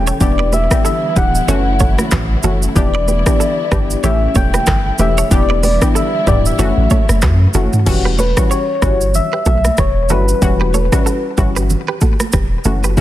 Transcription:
Already playing: E1 C#3 E3 G3 A3 C#4 E4 G4 G5
0.07 A4 C#5, shaker
0.20 E1 D3 E3 G3 B3 D4 E4 G4 D5, kick, low conga, shaker
0.39 B4 D5, high conga
0.52 G4 B4 E5, high conga, shaker
0.71 E3 B3 D4 G4, kick, cross-stick, shaker
0.85 E4 A4 E5, shaker
1.16 D1 E3 B3 D4 G4 B4 F#5, kick, shaker
1.35 shaker
1.48 F#1 C#3 E3 F#3 A3 C#4 F#4 A4 C#5, low conga, shaker
1.80 A4 C#5, kick, high conga, shaker
1.99 cross-stick, high conga, shaker
2.11 A1 F#4 B4, kick, cross-stick, clap, low conga, shaker
2.43 F#1 E3 A3 C#4 F#4 A4, high conga, low conga, shaker
2.63 shaker
2.75 E1 D3 E3 G3 B3 D4 E4 G4 D5, kick, low conga, shaker
2.95 B4 D5, high conga
3.08 G4 B4, high conga, shaker
3.26 E3 B3 D4 G4, kick, cross-stick, shaker
3.40 E4 A4, shaker
3.71 G1 E3 B3 D4 G4 B4, kick, cross-stick, shaker
3.90 shaker
4.03 A1 C#3 E3 A3 C#4 E4 G4 A4 C#5 E5, low conga, shaker
4.35 E1 A4 C#5 G5, kick, high conga, shaker
4.54 G4 B4, cross-stick, high conga, shaker
4.67 G1 E4 A4, kick, cross-stick, clap, low conga, shaker
4.98 E1 E3 A3 C#4 G4 B4 E5, high conga, low conga, shaker
5.18 A4 C#5, shaker
5.31 E1 D3 E3 G3 B3 D4 E4 G4 D5, kick, low conga, shaker
5.50 B4 D5, high conga
5.63 G4 B4 D5, open hi-hat, high conga, shaker
5.81 E3 B3 D4 G4, kick, cross-stick, shaker
5.95 E4 A4 E5, shaker
6.27 D1 E3 B3 D4 G4 B4 D5, kick, mid tom, shaker
6.46 E5, shaker
6.59 F#1 C#3 E3 F#3 A3 C#4 F#4 A4 C#5, low conga, shaker
6.77 A1
6.90 A4 C#5, kick, high conga, shaker
7.09 F#1, cross-stick, high conga, shaker
7.22 F#2 F#4 B4, kick, cross-stick, clap, low conga, shaker
7.54 F#1 E3 A3 C#4 F#4 A4, high conga, low conga, shaker
7.73 mid tom, shaker
7.86 E1 E3 G3 C#4 F#4, kick, crash, low conga, shaker
8.05 G4 B4, high conga
8.18 A4 B4 C#5, high conga, shaker
8.37 E3 G3 C#4 F#4, kick, cross-stick, shaker
8.51 G4 C#5, shaker
8.82 G1 E3 G3 C#4 F#4, kick, cross-stick, shaker
9.01 shaker
9.14 E5, low conga, shaker
9.33 G4 B4
9.46 B1 F#4 A4 E5, kick, high conga, shaker
9.65 cross-stick, high conga, shaker
9.77 E1 G4 B4 C#5, kick, cross-stick, low conga, shaker
10.09 G1 E3 G3 C#4 F#4 A4 B4, high conga, low conga, shaker
10.29 shaker
10.42 E1 E3 G3 C#4 F#4, kick, low conga, shaker
10.61 G4 B4, high conga
10.74 A4 C#5, high conga, shaker
10.92 E3 G3 C#4 F#4, kick, cross-stick, shaker
11.06 F#4 A4, shaker
11.37 G1 E3 G3 C#4 E4 F#4 G4, kick, shaker
11.56 G4 B4, shaker
11.70 low conga, shaker
11.88 G4 B4
12.01 F#4 A4, kick, high conga, shaker
12.20 cross-stick, high conga, shaker
12.33 E1 G4 B4, kick, cross-stick, low conga, shaker
12.64 F#1 E3 A3 C#4 F#4 A4, high conga, low conga, shaker
12.84 G4 B4, shaker
12.97 E3 A3 C#4 F#4, kick, low conga, shaker

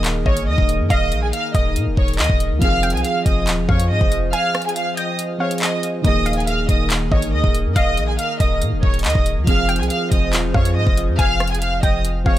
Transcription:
Already playing: D#1 D#3 A#3 D#4 G#4 A#4 F5
0.04 clap, closed hi-hat
0.26 G1 C#5 D#5 C#6, kick
0.37 closed hi-hat
0.47 D#2 D#5 D#6
0.58 D#1, kick
0.69 closed hi-hat
0.80 G2
0.90 D#1 D#5 F5 D#6, kick, closed hi-hat
1.12 A#1, closed hi-hat
1.22 G#4 G#5
1.33 F5 F6, closed hi-hat
1.55 D#1 D#5 D#6, kick, closed hi-hat
1.76 A#2, closed hi-hat
1.87 D#1
1.97 D#1 C#5 C#6, kick
2.08 closed hi-hat
2.13 closed hi-hat
2.19 D#2 D#5 D#6, clap, closed hi-hat
2.24 closed hi-hat
2.30 D#1, kick
2.40 closed hi-hat
2.51 D#2
2.59 F1 F3 C4 F4 C5 F5 F6, kick, closed hi-hat
2.65 G#4
2.83 G5, closed hi-hat
2.90 C2 G#5, closed hi-hat
2.95 G#4, closed hi-hat
3.05 F5 F6, closed hi-hat
3.26 F1 D#5 D#6, kick, closed hi-hat
3.47 D#1, clap, closed hi-hat
3.58 F1
3.69 F2 C#5 F5 C#6, kick
3.80 closed hi-hat
3.90 G#2 D#5 D#6
4.01 F1, kick
4.12 closed hi-hat
4.33 F5 G#5 F6, closed hi-hat
4.55 cross-stick, closed hi-hat
4.62 G#5, closed hi-hat
4.66 G#4, closed hi-hat
4.76 F5 F6, closed hi-hat
4.97 D#5 G5 D#6, closed hi-hat
5.19 closed hi-hat
5.38 F3 C4 G#4 C#5 F5 C#6
5.51 closed hi-hat
5.58 D#5, clap, closed hi-hat
5.62 D#6, closed hi-hat
5.83 closed hi-hat
6.02 D#1 D#3 A#3 D#4 G#4 A#4 D#5 D#6, kick, closed hi-hat
6.08 G#4
6.26 F5, closed hi-hat
6.33 G#5, closed hi-hat
6.37 G#4, closed hi-hat
6.47 F5 F6, closed hi-hat
6.69 D#1 D#5 D#6, kick, closed hi-hat
6.90 clap, closed hi-hat
7.12 G1 C#5 D#5 C#6, kick
7.22 closed hi-hat
7.33 D#2 D#5 D#6
7.44 D#1, kick
7.55 closed hi-hat
7.65 G2
7.76 D#1 D#5 F5 D#6, kick, closed hi-hat
7.97 A#1, closed hi-hat
8.08 G#4 G#5
8.19 F5 F6, closed hi-hat
8.40 D#1 D#5 D#6, kick, closed hi-hat
8.62 A#2, closed hi-hat
8.72 D#1
8.83 D#1 C#5 C#6, kick
8.94 closed hi-hat
8.99 closed hi-hat
9.04 D#2 D#5 D#6, clap, closed hi-hat
9.10 closed hi-hat
9.15 D#1, kick
9.26 closed hi-hat
9.37 D#2
9.44 F1 F3 C4 F4 C5 F5 F6, kick, closed hi-hat
9.50 G#4
9.69 G5, closed hi-hat
9.76 C2 G#5, closed hi-hat
9.80 G#4, closed hi-hat
9.90 F5 F6, closed hi-hat
10.11 F1 D#5 D#6, kick, closed hi-hat
10.33 D#1, clap, closed hi-hat
10.44 F1
10.54 F2 C#5 F5 C#6, kick
10.65 closed hi-hat
10.76 G#2 D#5 D#6
10.87 F1, kick
10.97 closed hi-hat
11.08 F2
11.19 F1 F5 G#5 F6, kick, closed hi-hat
11.40 cross-stick, closed hi-hat
11.47 G#5, closed hi-hat
11.52 G#4, closed hi-hat
11.62 F5 F6, closed hi-hat
11.83 F1 D#5 G5 D#6, kick, closed hi-hat
12.05 closed hi-hat
12.24 F1 F3 C4 G#4 C#5 F5 C#6, kick

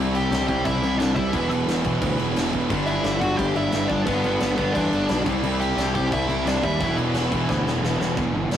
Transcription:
Already playing: C2 C3 G3 C4 E4
0.15 G4 G5, crash
0.31 C2 C3 G3 C4, snare, crash
0.48 C2 G4 G5, kick, crash
0.64 C2 E4 E5, kick, crash
0.81 C2 C3 G3 C4, crash
0.98 C2 D4 D5, snare, crash
1.15 C2 E4 E5, kick, crash
1.32 E1 E2 B2 E3 G3 B3 E4, kick, crash
1.49 E1, crash
1.67 E1, snare, crash
1.83 E1 E2 B2 E3, kick, crash
2.01 D2, kick, crash
2.19 E1, crash
2.35 E1 E2 B2 E3, snare, crash
2.53 E1, kick, crash
2.69 G1 G2 D3 G3 B3 D4, kick, crash
2.87 E4 E5, crash
3.04 G1, snare, crash
3.20 G1 G2 D3 G3 F#4 F#5, kick, crash
3.37 G1 G4 G5, kick, crash
3.54 G1 E4 E5, crash
3.72 G1 G2 D3 G3, snare, crash
3.88 G1 D4 D5, kick, crash
4.05 G1 G2 D3 G3 B3 D4 B4, kick, crash
4.24 G1, crash
4.40 G1, snare, crash
4.56 G1 D3 G3 B3 B4, kick, crash
4.61 G2
4.74 E2 D4 D5, kick, crash
4.92 G1, crash
5.09 B1 G2 D3 G3, snare, crash
5.26 C2 C3 G3 C4 E4, kick, crash
5.43 C2, crash
5.60 G4 G5, crash
5.76 C2 C3 G3 C4, snare, crash
5.94 C2 G4 G5, kick, crash
6.12 C2 E4 E5, kick, crash
6.29 C2 C3 G3 C4, crash
6.46 C2 D4 D5, snare, crash
6.63 D#2 E4 E5, kick, crash
6.80 E1 E2 B2 E3 G3 B3 E4, kick, crash
6.98 E1, crash
7.14 E1, snare, crash
7.32 E1 E2 B2 E3, kick, crash
7.49 D2, kick, snare
7.65 E1, snare
7.82 E1 E2 B2 E3, snare
7.99 E1, snare
8.17 E1 E2 B2 E3, kick, crash
8.33 G1 E2 B2 E3
8.50 E1 E2 B2 E3, snare, crash

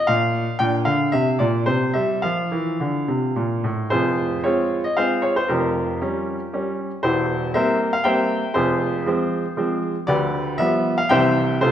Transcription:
0.07 A#2 F5
0.59 A#2 D4 G5
0.85 D3 F5
1.12 C3 E5
1.39 A#2 D5
1.66 C3 C5
1.94 G3 E5
2.22 F3 F4 F5
2.51 E3
2.80 D3
3.08 C3
3.36 A#2
3.64 A2
3.90 F1 F2 F4 G#4 C5
4.44 G#3 C4 F4 C#5
4.84 D#5
4.97 G#3 C4 F4 G#4 C5 F5
5.22 C#5
5.36 C5
5.48 F1 F2 F4 G4 A#4
6.02 G3 C#4
6.53 G3 C#4
7.03 E1 E2 E4 G4 C5
7.54 G3 A#3 C4 A#4 C5 E5
7.93 F5
8.04 G3 A#3 C4 C5 E5 G5
8.54 F1 F2 F4 G#4 C5
9.06 F3 G#3 C4
9.57 F3 G#3 C4
10.07 D2 D3 G4 B4 D5
10.58 F3 G3 B3 E5
10.98 F5
11.09 C2 C3 E3 G3 C4 C5 E5 G5
11.61 C2 C3 F4 A4 C5

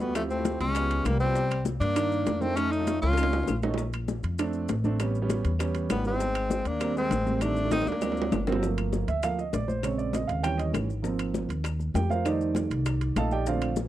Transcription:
Already playing: D2
0.00 G3 A3 B3 F#4, high bongo, high conga, maracas
0.15 F3 A3 C4 E4 F4 G4, high bongo, high conga, high timbale, claves, maracas
0.30 A3 C4, high conga, maracas
0.38 C4 E4 F4 G4
0.45 high bongo, high conga, high timbale, maracas
0.60 C#2 G#3 C#4, high bongo, high timbale, maracas
0.75 B3 F4 G4, high bongo, high conga, high timbale, claves, maracas
0.90 high bongo, high conga, high timbale, maracas
1.05 C2 G3 A#3, high bongo, low bongo, high conga, high timbale, claves, maracas
1.20 G3 B3 C4 F4 G4, high bongo, high conga, maracas
1.27 B3 F4 G4
1.35 high bongo, high conga, maracas
1.50 high conga, high timbale, claves, maracas
1.65 high bongo, high conga, maracas
1.80 G2 A#3 D4, high bongo, high conga, high timbale, maracas
1.96 D#3 A#3 D4, high bongo, high conga, high timbale, claves, maracas
2.11 high bongo, high conga, maracas
2.26 high bongo, low bongo, high conga, high timbale, low timbale, maracas
2.41 A3 A#3 C4 D4 D#4, high bongo, high conga, maracas
2.56 A3 C#4 D#4, high bongo, high conga, high timbale, claves, maracas
2.71 A3 D#4, high conga, maracas
2.80 A3 C#4 F4
2.87 high bongo, high conga, high timbale, maracas
3.02 C#2 C#4 F4, high bongo, high timbale, maracas
3.13 high timbale
3.17 A3 C#4 D#4, high bongo, high conga, claves, maracas
3.23 high timbale
3.33 high conga, low timbale, maracas
3.43 low timbale
3.48 A#1, high bongo, low bongo, high conga, claves, maracas
3.63 A3 C#4 D#4, high bongo, high conga, low timbale, maracas
3.71 A3 C#4 D#4, low timbale
3.78 high bongo, high conga, maracas
3.93 high conga, high timbale, claves, maracas
4.08 high bongo, high conga, maracas
4.23 F2, high bongo, high conga, high timbale, maracas
4.38 A3 C4 D4, high bongo, high conga, high timbale, claves, maracas
4.53 high bongo, high conga, maracas
4.68 A1, high bongo, low bongo, high conga, high timbale, maracas
4.84 A3 C4 D4, high bongo, high conga, maracas
4.99 G3 B3 C#4, high bongo, high conga, high timbale, claves, maracas
5.14 high conga, maracas
5.22 G3 B3 C#4
5.30 high bongo, high conga, high timbale, maracas
5.45 E2, high bongo, high timbale, maracas
5.59 G3 B3 C#4, high bongo, high conga, high timbale, claves, maracas
5.75 high bongo, high conga, high timbale, maracas
5.90 G#1 G3 B3, high bongo, low bongo, high conga, high timbale, low timbale, claves, maracas
6.05 G3 G#3 B3 C4 C#4, high bongo, high conga, maracas
6.12 G3 B3 E4
6.20 high bongo, high conga, maracas
6.35 high conga, high timbale, claves, maracas
6.50 high bongo, high conga, maracas
6.65 D#2 A#3 D4, high bongo, high conga, high timbale, maracas
6.80 G3 A#3 C4, high bongo, high conga, high timbale, claves, maracas
6.96 G#3 C4, high bongo, high conga, maracas
7.11 A1, high bongo, low bongo, high conga, high timbale, maracas
7.26 G3 A#3 C4, high bongo, high conga, maracas
7.34 G#3 C4
7.41 D#3 G3 A3 C4 D4, high bongo, high conga, high timbale, claves, maracas
7.56 high conga, maracas
7.65 D#3 G3 A3
7.71 C4 D#4, high bongo, high conga, high timbale, maracas
7.82 high timbale
7.86 D2 A#3 D4, high bongo, maracas
7.92 high timbale
8.01 F#3 A#3 C4, high conga, low timbale, claves, maracas
8.12 low timbale
8.17 high conga, maracas
8.22 low timbale
8.32 G1, low bongo, high conga, low timbale, claves, maracas
8.47 F#3 A#3 C4, low bongo, high conga, maracas
8.52 F#3 A#3 C4, low timbale
8.62 F3 A3 A#3, high bongo, high conga, maracas
8.77 high conga, high timbale, claves, maracas
8.93 high bongo, high conga, maracas
9.08 D2 E5, high bongo, high conga, high timbale, maracas
9.23 F3 A3 A#3 F5, high bongo, high conga, high timbale, claves, maracas
9.38 D#5, high bongo, high conga, maracas
9.53 A#1 D5, high bongo, low bongo, high conga, high timbale, maracas
9.68 C5, high bongo, high conga, maracas
9.82 C#3 G#3 C4 C#5, high bongo, high conga, high timbale, claves, maracas
9.98 D5, high conga, maracas
10.13 D#5, high bongo, high conga, high timbale, maracas
10.28 D#2 F5, high bongo, high timbale, maracas
10.42 E3 G3 C#4 G5, high bongo, high conga, high timbale, claves, maracas
10.58 D#5, high bongo, high conga, high timbale, maracas
10.73 G#1, high bongo, low bongo, high conga, high timbale, claves, maracas
10.89 high bongo, high conga, maracas
11.02 F3 A#3 C4, high bongo, high conga, maracas
11.19 high conga, high timbale, claves, maracas
11.34 high bongo, high conga, maracas
11.49 D#2, high bongo, high conga, high timbale, maracas
11.64 high bongo, high conga, high timbale, claves, maracas
11.79 high bongo, high conga, maracas
11.94 F2 G4 G5, high bongo, low bongo, high conga, high timbale, low timbale, maracas
12.10 F4 A#4 C5 F5, high bongo, high conga, maracas
12.25 D#3 G3 A3 D#4 A4 C5 D5 D#5, high bongo, high conga, high timbale, claves, maracas
12.40 high conga, maracas
12.55 high bongo, high conga, high timbale, maracas
12.70 C2, high bongo, high timbale, maracas
12.86 high bongo, high conga, high timbale, claves, maracas
13.01 high bongo, high conga, high timbale, maracas
13.16 A#1 A4 D#5 F5 A5, high bongo, low bongo, high conga, high timbale, claves, maracas
13.31 G4 D5 D#5 G5, high bongo, high conga, maracas
13.46 D3 A3 C4 F4 C5 D5 F5, high bongo, high conga, maracas
13.61 high conga, high timbale, claves, maracas
13.76 high bongo, high conga, maracas

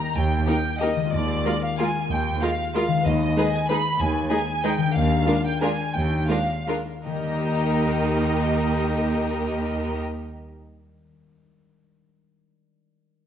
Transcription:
Already playing: D#3 G3 D#4 G4 A#4 D#5 A#5
0.16 D#2 G5
0.47 A#3 D#4 G4 A#4 G5
0.81 A#3 D#4 G4 A#4 D#5
0.96 D#3
1.00 G#3
1.05 F4
1.09 A#4
1.14 D#2 D5
1.45 G#3 F4 A#4
1.64 F5
1.79 G#3 F4 A#4 G#5
2.10 D#2 G5
2.42 G#3 F4 A#4 F5
2.74 G#3 F4 A#4 F5
2.87 D#3
2.92 G#3
2.97 D#4
3.01 B4 D#5
3.05 D#2
3.36 G#3 D#4 G#4 B4
3.53 G#5
3.69 G#3 D#4 G#4 B4 B5
4.00 D#2 G#5
4.30 G#3 D#4 G#4 B4 G#5
4.64 G#3 D#4 G#4 B4 G5
4.77 D#3
4.82 G#3
4.86 D4
4.91 A#4
4.96 D#2 F5
5.27 G#3 D4 F4 A#4
5.46 G5
5.61 G#3 D4 F4 A#4 G#5
5.95 D#2 G5
6.29 G#3 D4 F4 A#4 F5
6.67 G#3 D4 F4 A#4
7.05 D#2 D#3 A#3 D#4 G4 A#4 D#5
7.13 G3
7.20 D#4
7.27 A#4
7.34 D#5

